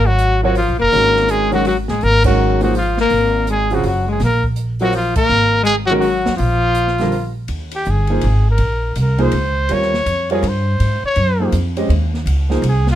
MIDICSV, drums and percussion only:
0, 0, Header, 1, 2, 480
1, 0, Start_track
1, 0, Tempo, 365631
1, 1220, Time_signature, 3, 2, 24, 8
1, 17003, End_track
2, 0, Start_track
2, 0, Title_t, "Drums"
2, 243, Note_on_c, 9, 42, 53
2, 375, Note_off_c, 9, 42, 0
2, 725, Note_on_c, 9, 46, 53
2, 856, Note_off_c, 9, 46, 0
2, 1207, Note_on_c, 9, 46, 49
2, 1338, Note_off_c, 9, 46, 0
2, 1526, Note_on_c, 9, 38, 39
2, 1657, Note_off_c, 9, 38, 0
2, 1685, Note_on_c, 9, 42, 53
2, 1817, Note_off_c, 9, 42, 0
2, 1994, Note_on_c, 9, 46, 39
2, 2126, Note_off_c, 9, 46, 0
2, 2165, Note_on_c, 9, 46, 50
2, 2296, Note_off_c, 9, 46, 0
2, 2471, Note_on_c, 9, 38, 48
2, 2603, Note_off_c, 9, 38, 0
2, 2635, Note_on_c, 9, 46, 47
2, 2766, Note_off_c, 9, 46, 0
2, 2940, Note_on_c, 9, 49, 83
2, 2949, Note_on_c, 9, 36, 90
2, 3071, Note_off_c, 9, 49, 0
2, 3080, Note_off_c, 9, 36, 0
2, 3422, Note_on_c, 9, 46, 42
2, 3553, Note_off_c, 9, 46, 0
2, 3607, Note_on_c, 9, 46, 55
2, 3739, Note_off_c, 9, 46, 0
2, 3903, Note_on_c, 9, 38, 43
2, 4035, Note_off_c, 9, 38, 0
2, 4066, Note_on_c, 9, 46, 51
2, 4197, Note_off_c, 9, 46, 0
2, 4557, Note_on_c, 9, 42, 55
2, 4688, Note_off_c, 9, 42, 0
2, 4860, Note_on_c, 9, 46, 38
2, 4992, Note_off_c, 9, 46, 0
2, 5034, Note_on_c, 9, 46, 54
2, 5166, Note_off_c, 9, 46, 0
2, 5510, Note_on_c, 9, 46, 49
2, 5516, Note_on_c, 9, 38, 41
2, 5641, Note_off_c, 9, 46, 0
2, 5648, Note_off_c, 9, 38, 0
2, 5825, Note_on_c, 9, 36, 62
2, 5957, Note_off_c, 9, 36, 0
2, 5985, Note_on_c, 9, 42, 52
2, 6117, Note_off_c, 9, 42, 0
2, 6292, Note_on_c, 9, 46, 43
2, 6423, Note_off_c, 9, 46, 0
2, 6466, Note_on_c, 9, 46, 59
2, 6597, Note_off_c, 9, 46, 0
2, 6768, Note_on_c, 9, 49, 79
2, 6777, Note_on_c, 9, 36, 95
2, 6899, Note_off_c, 9, 49, 0
2, 6908, Note_off_c, 9, 36, 0
2, 7418, Note_on_c, 9, 42, 53
2, 7550, Note_off_c, 9, 42, 0
2, 7898, Note_on_c, 9, 46, 48
2, 8030, Note_off_c, 9, 46, 0
2, 8216, Note_on_c, 9, 38, 65
2, 8347, Note_off_c, 9, 38, 0
2, 8375, Note_on_c, 9, 46, 55
2, 8507, Note_off_c, 9, 46, 0
2, 8856, Note_on_c, 9, 42, 58
2, 8988, Note_off_c, 9, 42, 0
2, 9025, Note_on_c, 9, 38, 27
2, 9157, Note_off_c, 9, 38, 0
2, 9165, Note_on_c, 9, 46, 42
2, 9184, Note_on_c, 9, 38, 43
2, 9296, Note_off_c, 9, 46, 0
2, 9315, Note_off_c, 9, 38, 0
2, 9346, Note_on_c, 9, 46, 52
2, 9477, Note_off_c, 9, 46, 0
2, 9819, Note_on_c, 9, 51, 64
2, 9951, Note_off_c, 9, 51, 0
2, 10127, Note_on_c, 9, 51, 64
2, 10258, Note_off_c, 9, 51, 0
2, 10300, Note_on_c, 9, 44, 51
2, 10432, Note_off_c, 9, 44, 0
2, 10597, Note_on_c, 9, 51, 42
2, 10729, Note_off_c, 9, 51, 0
2, 10782, Note_on_c, 9, 51, 70
2, 10913, Note_off_c, 9, 51, 0
2, 11260, Note_on_c, 9, 51, 64
2, 11391, Note_off_c, 9, 51, 0
2, 11755, Note_on_c, 9, 44, 51
2, 11755, Note_on_c, 9, 51, 65
2, 11886, Note_off_c, 9, 44, 0
2, 11886, Note_off_c, 9, 51, 0
2, 12056, Note_on_c, 9, 51, 46
2, 12187, Note_off_c, 9, 51, 0
2, 12229, Note_on_c, 9, 51, 67
2, 12360, Note_off_c, 9, 51, 0
2, 12717, Note_on_c, 9, 51, 66
2, 12849, Note_off_c, 9, 51, 0
2, 12894, Note_on_c, 9, 38, 30
2, 13025, Note_off_c, 9, 38, 0
2, 13048, Note_on_c, 9, 38, 49
2, 13179, Note_off_c, 9, 38, 0
2, 13210, Note_on_c, 9, 44, 51
2, 13210, Note_on_c, 9, 51, 64
2, 13342, Note_off_c, 9, 44, 0
2, 13342, Note_off_c, 9, 51, 0
2, 13517, Note_on_c, 9, 51, 45
2, 13648, Note_off_c, 9, 51, 0
2, 13699, Note_on_c, 9, 51, 70
2, 13830, Note_off_c, 9, 51, 0
2, 14177, Note_on_c, 9, 51, 66
2, 14308, Note_off_c, 9, 51, 0
2, 14646, Note_on_c, 9, 51, 58
2, 14777, Note_off_c, 9, 51, 0
2, 15127, Note_on_c, 9, 44, 66
2, 15127, Note_on_c, 9, 51, 70
2, 15258, Note_off_c, 9, 44, 0
2, 15258, Note_off_c, 9, 51, 0
2, 15447, Note_on_c, 9, 51, 53
2, 15578, Note_off_c, 9, 51, 0
2, 15623, Note_on_c, 9, 51, 66
2, 15755, Note_off_c, 9, 51, 0
2, 15938, Note_on_c, 9, 38, 37
2, 16069, Note_off_c, 9, 38, 0
2, 16106, Note_on_c, 9, 44, 44
2, 16106, Note_on_c, 9, 51, 74
2, 16237, Note_off_c, 9, 44, 0
2, 16237, Note_off_c, 9, 51, 0
2, 16417, Note_on_c, 9, 38, 50
2, 16548, Note_off_c, 9, 38, 0
2, 16587, Note_on_c, 9, 51, 74
2, 16718, Note_off_c, 9, 51, 0
2, 16894, Note_on_c, 9, 38, 50
2, 17003, Note_off_c, 9, 38, 0
2, 17003, End_track
0, 0, End_of_file